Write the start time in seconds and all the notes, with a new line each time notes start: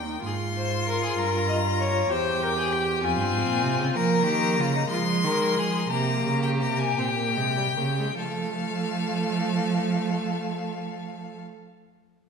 Already playing: D#2 A#4 G5
0.08 D#4
0.23 G#2 F4 G#4 C6
0.57 C5
0.87 A#4
1.04 G#4
1.18 G2 A#4 A#5
1.48 D#5
1.79 C#5
2.10 E2 G4 C5 G5
2.43 A#4
2.57 G#4
2.72 G4
3.02 F2 C4 F4 G#5
3.17 G2
3.33 G#2
3.49 A#2
3.64 C3
3.79 C#3
3.95 F3 A#3 A#4 A#5
4.26 D#3 G4
4.59 C#3 F4
4.76 D#4
4.89 F3 G#3 F4 C6
5.24 D#3 A#4
5.56 F3 G#4
5.89 C3 A#3 G4 A#5
6.25 C#3
6.42 G5
6.61 C3 A#5
6.79 G#5
6.97 A#2 C4 G5
7.17 A#3
7.36 C3 G#3
7.57 G3
7.76 C#3 A#3
7.97 G#3
8.18 F3 A3 A4 F5